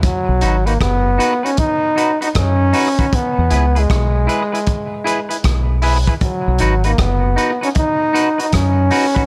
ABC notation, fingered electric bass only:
X:1
M:4/4
L:1/16
Q:"Swing 16ths" 1/4=78
K:B
V:1 name="Fingered electric bass" clef=bass
z B,,, G,,,2 F,,,2 z6 F,,2 z2 | z E,, C,,2 B,,,2 z6 B,,,3 z | z B,,, G,,,2 F,,,2 z6 F,,2 z2 |]